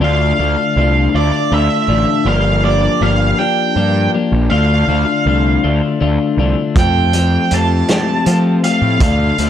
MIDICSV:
0, 0, Header, 1, 5, 480
1, 0, Start_track
1, 0, Key_signature, -1, "minor"
1, 0, Tempo, 749064
1, 13, Time_signature, 6, 3, 24, 8
1, 6086, End_track
2, 0, Start_track
2, 0, Title_t, "Lead electric guitar"
2, 0, Program_c, 0, 29
2, 27, Note_on_c, 0, 77, 75
2, 738, Note_off_c, 0, 77, 0
2, 741, Note_on_c, 0, 74, 75
2, 985, Note_off_c, 0, 74, 0
2, 987, Note_on_c, 0, 76, 85
2, 1461, Note_off_c, 0, 76, 0
2, 1463, Note_on_c, 0, 77, 91
2, 1695, Note_off_c, 0, 77, 0
2, 1697, Note_on_c, 0, 74, 73
2, 1939, Note_off_c, 0, 74, 0
2, 1941, Note_on_c, 0, 77, 86
2, 2170, Note_on_c, 0, 79, 88
2, 2186, Note_off_c, 0, 77, 0
2, 2627, Note_off_c, 0, 79, 0
2, 2885, Note_on_c, 0, 77, 97
2, 3824, Note_off_c, 0, 77, 0
2, 4349, Note_on_c, 0, 79, 82
2, 4830, Note_off_c, 0, 79, 0
2, 4832, Note_on_c, 0, 81, 98
2, 5517, Note_off_c, 0, 81, 0
2, 5536, Note_on_c, 0, 77, 91
2, 5775, Note_off_c, 0, 77, 0
2, 5783, Note_on_c, 0, 77, 80
2, 6086, Note_off_c, 0, 77, 0
2, 6086, End_track
3, 0, Start_track
3, 0, Title_t, "Clean electric guitar"
3, 0, Program_c, 1, 27
3, 6, Note_on_c, 1, 50, 80
3, 9, Note_on_c, 1, 57, 78
3, 11, Note_on_c, 1, 62, 90
3, 12, Note_on_c, 1, 65, 92
3, 241, Note_off_c, 1, 65, 0
3, 246, Note_off_c, 1, 57, 0
3, 246, Note_off_c, 1, 62, 0
3, 247, Note_off_c, 1, 50, 0
3, 248, Note_on_c, 1, 65, 76
3, 254, Note_on_c, 1, 57, 67
3, 254, Note_on_c, 1, 62, 71
3, 255, Note_on_c, 1, 50, 61
3, 486, Note_off_c, 1, 50, 0
3, 490, Note_off_c, 1, 57, 0
3, 491, Note_off_c, 1, 62, 0
3, 491, Note_off_c, 1, 65, 0
3, 494, Note_on_c, 1, 50, 62
3, 498, Note_on_c, 1, 57, 60
3, 499, Note_on_c, 1, 62, 71
3, 502, Note_on_c, 1, 65, 62
3, 725, Note_off_c, 1, 65, 0
3, 728, Note_off_c, 1, 62, 0
3, 729, Note_off_c, 1, 57, 0
3, 732, Note_off_c, 1, 50, 0
3, 733, Note_on_c, 1, 65, 73
3, 736, Note_on_c, 1, 57, 61
3, 736, Note_on_c, 1, 62, 67
3, 739, Note_on_c, 1, 50, 55
3, 962, Note_off_c, 1, 50, 0
3, 964, Note_off_c, 1, 57, 0
3, 967, Note_off_c, 1, 62, 0
3, 969, Note_off_c, 1, 65, 0
3, 970, Note_on_c, 1, 50, 61
3, 972, Note_on_c, 1, 57, 71
3, 975, Note_on_c, 1, 62, 69
3, 977, Note_on_c, 1, 65, 81
3, 1199, Note_off_c, 1, 65, 0
3, 1203, Note_off_c, 1, 62, 0
3, 1207, Note_on_c, 1, 65, 68
3, 1208, Note_off_c, 1, 57, 0
3, 1210, Note_off_c, 1, 50, 0
3, 1211, Note_on_c, 1, 62, 72
3, 1216, Note_on_c, 1, 57, 62
3, 1218, Note_on_c, 1, 50, 56
3, 1444, Note_off_c, 1, 62, 0
3, 1445, Note_off_c, 1, 50, 0
3, 1447, Note_on_c, 1, 53, 80
3, 1448, Note_off_c, 1, 57, 0
3, 1450, Note_on_c, 1, 58, 83
3, 1451, Note_off_c, 1, 65, 0
3, 1452, Note_on_c, 1, 62, 94
3, 1457, Note_on_c, 1, 67, 95
3, 1681, Note_off_c, 1, 67, 0
3, 1686, Note_off_c, 1, 62, 0
3, 1688, Note_off_c, 1, 58, 0
3, 1689, Note_on_c, 1, 67, 75
3, 1691, Note_off_c, 1, 53, 0
3, 1694, Note_on_c, 1, 62, 69
3, 1696, Note_on_c, 1, 58, 62
3, 1699, Note_on_c, 1, 53, 64
3, 1923, Note_off_c, 1, 53, 0
3, 1927, Note_off_c, 1, 58, 0
3, 1930, Note_off_c, 1, 62, 0
3, 1931, Note_on_c, 1, 53, 57
3, 1932, Note_off_c, 1, 67, 0
3, 1935, Note_on_c, 1, 58, 70
3, 1937, Note_on_c, 1, 62, 73
3, 1940, Note_on_c, 1, 67, 71
3, 2165, Note_off_c, 1, 67, 0
3, 2169, Note_off_c, 1, 62, 0
3, 2171, Note_off_c, 1, 58, 0
3, 2173, Note_off_c, 1, 53, 0
3, 2173, Note_on_c, 1, 67, 73
3, 2177, Note_on_c, 1, 62, 73
3, 2179, Note_on_c, 1, 58, 63
3, 2181, Note_on_c, 1, 53, 64
3, 2402, Note_off_c, 1, 53, 0
3, 2403, Note_off_c, 1, 58, 0
3, 2407, Note_off_c, 1, 62, 0
3, 2408, Note_off_c, 1, 67, 0
3, 2410, Note_on_c, 1, 53, 64
3, 2411, Note_on_c, 1, 58, 68
3, 2415, Note_on_c, 1, 62, 79
3, 2416, Note_on_c, 1, 67, 75
3, 2647, Note_off_c, 1, 67, 0
3, 2648, Note_off_c, 1, 62, 0
3, 2653, Note_off_c, 1, 53, 0
3, 2653, Note_off_c, 1, 58, 0
3, 2655, Note_on_c, 1, 67, 70
3, 2656, Note_on_c, 1, 62, 67
3, 2660, Note_on_c, 1, 58, 63
3, 2661, Note_on_c, 1, 53, 56
3, 2883, Note_off_c, 1, 62, 0
3, 2884, Note_off_c, 1, 53, 0
3, 2886, Note_on_c, 1, 50, 71
3, 2887, Note_off_c, 1, 58, 0
3, 2889, Note_on_c, 1, 57, 84
3, 2890, Note_off_c, 1, 67, 0
3, 2891, Note_on_c, 1, 62, 84
3, 2892, Note_on_c, 1, 65, 85
3, 3124, Note_off_c, 1, 65, 0
3, 3128, Note_off_c, 1, 62, 0
3, 3130, Note_off_c, 1, 57, 0
3, 3131, Note_off_c, 1, 50, 0
3, 3132, Note_on_c, 1, 65, 72
3, 3136, Note_on_c, 1, 62, 71
3, 3138, Note_on_c, 1, 57, 66
3, 3141, Note_on_c, 1, 50, 62
3, 3367, Note_off_c, 1, 50, 0
3, 3370, Note_off_c, 1, 57, 0
3, 3372, Note_off_c, 1, 62, 0
3, 3374, Note_off_c, 1, 65, 0
3, 3375, Note_on_c, 1, 50, 55
3, 3377, Note_on_c, 1, 57, 60
3, 3380, Note_on_c, 1, 62, 70
3, 3385, Note_on_c, 1, 65, 65
3, 3605, Note_off_c, 1, 65, 0
3, 3608, Note_off_c, 1, 62, 0
3, 3609, Note_off_c, 1, 57, 0
3, 3611, Note_off_c, 1, 50, 0
3, 3612, Note_on_c, 1, 65, 73
3, 3616, Note_on_c, 1, 62, 65
3, 3617, Note_on_c, 1, 57, 65
3, 3618, Note_on_c, 1, 50, 65
3, 3840, Note_off_c, 1, 50, 0
3, 3842, Note_off_c, 1, 57, 0
3, 3845, Note_off_c, 1, 62, 0
3, 3848, Note_on_c, 1, 50, 69
3, 3849, Note_off_c, 1, 65, 0
3, 3850, Note_on_c, 1, 57, 67
3, 3852, Note_on_c, 1, 62, 69
3, 3857, Note_on_c, 1, 65, 73
3, 4088, Note_off_c, 1, 62, 0
3, 4088, Note_off_c, 1, 65, 0
3, 4091, Note_off_c, 1, 50, 0
3, 4092, Note_off_c, 1, 57, 0
3, 4096, Note_on_c, 1, 62, 63
3, 4096, Note_on_c, 1, 65, 67
3, 4101, Note_on_c, 1, 57, 59
3, 4104, Note_on_c, 1, 50, 60
3, 4329, Note_off_c, 1, 57, 0
3, 4332, Note_off_c, 1, 50, 0
3, 4334, Note_on_c, 1, 53, 78
3, 4335, Note_off_c, 1, 62, 0
3, 4335, Note_off_c, 1, 65, 0
3, 4337, Note_on_c, 1, 57, 85
3, 4340, Note_on_c, 1, 60, 80
3, 4342, Note_on_c, 1, 67, 85
3, 4567, Note_off_c, 1, 67, 0
3, 4571, Note_off_c, 1, 60, 0
3, 4574, Note_off_c, 1, 53, 0
3, 4574, Note_off_c, 1, 57, 0
3, 4574, Note_on_c, 1, 67, 82
3, 4579, Note_on_c, 1, 60, 70
3, 4581, Note_on_c, 1, 57, 62
3, 4584, Note_on_c, 1, 53, 60
3, 4811, Note_off_c, 1, 53, 0
3, 4812, Note_off_c, 1, 57, 0
3, 4814, Note_off_c, 1, 67, 0
3, 4816, Note_off_c, 1, 60, 0
3, 4819, Note_on_c, 1, 53, 61
3, 4820, Note_on_c, 1, 57, 66
3, 4825, Note_on_c, 1, 60, 64
3, 4825, Note_on_c, 1, 67, 70
3, 5050, Note_off_c, 1, 67, 0
3, 5053, Note_off_c, 1, 60, 0
3, 5054, Note_off_c, 1, 57, 0
3, 5056, Note_off_c, 1, 53, 0
3, 5057, Note_on_c, 1, 67, 73
3, 5061, Note_on_c, 1, 60, 67
3, 5062, Note_on_c, 1, 57, 63
3, 5065, Note_on_c, 1, 53, 56
3, 5285, Note_off_c, 1, 53, 0
3, 5288, Note_off_c, 1, 57, 0
3, 5292, Note_off_c, 1, 60, 0
3, 5293, Note_on_c, 1, 53, 62
3, 5295, Note_off_c, 1, 67, 0
3, 5296, Note_on_c, 1, 57, 68
3, 5300, Note_on_c, 1, 60, 74
3, 5303, Note_on_c, 1, 67, 78
3, 5528, Note_off_c, 1, 67, 0
3, 5531, Note_off_c, 1, 60, 0
3, 5532, Note_off_c, 1, 57, 0
3, 5533, Note_off_c, 1, 53, 0
3, 5536, Note_on_c, 1, 67, 67
3, 5539, Note_on_c, 1, 60, 62
3, 5540, Note_on_c, 1, 57, 61
3, 5542, Note_on_c, 1, 53, 56
3, 5771, Note_off_c, 1, 57, 0
3, 5773, Note_off_c, 1, 53, 0
3, 5775, Note_off_c, 1, 67, 0
3, 5776, Note_off_c, 1, 60, 0
3, 5776, Note_on_c, 1, 50, 75
3, 5778, Note_on_c, 1, 57, 84
3, 5781, Note_on_c, 1, 62, 80
3, 5784, Note_on_c, 1, 65, 83
3, 6006, Note_off_c, 1, 65, 0
3, 6009, Note_off_c, 1, 62, 0
3, 6011, Note_off_c, 1, 57, 0
3, 6014, Note_off_c, 1, 50, 0
3, 6014, Note_on_c, 1, 65, 69
3, 6016, Note_on_c, 1, 62, 70
3, 6019, Note_on_c, 1, 57, 75
3, 6023, Note_on_c, 1, 50, 64
3, 6086, Note_off_c, 1, 50, 0
3, 6086, Note_off_c, 1, 57, 0
3, 6086, Note_off_c, 1, 62, 0
3, 6086, Note_off_c, 1, 65, 0
3, 6086, End_track
4, 0, Start_track
4, 0, Title_t, "Picked electric bass"
4, 0, Program_c, 2, 34
4, 3, Note_on_c, 2, 38, 90
4, 202, Note_off_c, 2, 38, 0
4, 251, Note_on_c, 2, 38, 73
4, 350, Note_off_c, 2, 38, 0
4, 489, Note_on_c, 2, 36, 83
4, 686, Note_off_c, 2, 36, 0
4, 734, Note_on_c, 2, 38, 81
4, 832, Note_off_c, 2, 38, 0
4, 972, Note_on_c, 2, 38, 78
4, 1071, Note_off_c, 2, 38, 0
4, 1206, Note_on_c, 2, 33, 86
4, 1307, Note_off_c, 2, 33, 0
4, 1443, Note_on_c, 2, 31, 95
4, 1837, Note_off_c, 2, 31, 0
4, 1929, Note_on_c, 2, 31, 78
4, 2126, Note_off_c, 2, 31, 0
4, 2409, Note_on_c, 2, 43, 72
4, 2607, Note_off_c, 2, 43, 0
4, 2769, Note_on_c, 2, 34, 85
4, 2869, Note_off_c, 2, 34, 0
4, 2893, Note_on_c, 2, 38, 91
4, 3089, Note_off_c, 2, 38, 0
4, 3124, Note_on_c, 2, 38, 66
4, 3226, Note_off_c, 2, 38, 0
4, 3370, Note_on_c, 2, 36, 82
4, 3567, Note_off_c, 2, 36, 0
4, 3617, Note_on_c, 2, 38, 82
4, 3713, Note_off_c, 2, 38, 0
4, 3854, Note_on_c, 2, 38, 76
4, 3952, Note_off_c, 2, 38, 0
4, 4085, Note_on_c, 2, 36, 83
4, 4186, Note_off_c, 2, 36, 0
4, 4329, Note_on_c, 2, 41, 89
4, 4720, Note_off_c, 2, 41, 0
4, 4817, Note_on_c, 2, 41, 84
4, 5010, Note_off_c, 2, 41, 0
4, 5297, Note_on_c, 2, 53, 73
4, 5490, Note_off_c, 2, 53, 0
4, 5651, Note_on_c, 2, 45, 86
4, 5749, Note_off_c, 2, 45, 0
4, 5767, Note_on_c, 2, 38, 95
4, 5964, Note_off_c, 2, 38, 0
4, 6014, Note_on_c, 2, 38, 73
4, 6086, Note_off_c, 2, 38, 0
4, 6086, End_track
5, 0, Start_track
5, 0, Title_t, "Drums"
5, 4330, Note_on_c, 9, 36, 109
5, 4331, Note_on_c, 9, 42, 70
5, 4394, Note_off_c, 9, 36, 0
5, 4395, Note_off_c, 9, 42, 0
5, 4569, Note_on_c, 9, 42, 57
5, 4633, Note_off_c, 9, 42, 0
5, 4811, Note_on_c, 9, 42, 56
5, 4875, Note_off_c, 9, 42, 0
5, 5052, Note_on_c, 9, 42, 71
5, 5058, Note_on_c, 9, 38, 97
5, 5116, Note_off_c, 9, 42, 0
5, 5122, Note_off_c, 9, 38, 0
5, 5293, Note_on_c, 9, 42, 59
5, 5357, Note_off_c, 9, 42, 0
5, 5534, Note_on_c, 9, 42, 54
5, 5598, Note_off_c, 9, 42, 0
5, 5770, Note_on_c, 9, 36, 107
5, 5770, Note_on_c, 9, 42, 85
5, 5834, Note_off_c, 9, 36, 0
5, 5834, Note_off_c, 9, 42, 0
5, 6012, Note_on_c, 9, 42, 58
5, 6076, Note_off_c, 9, 42, 0
5, 6086, End_track
0, 0, End_of_file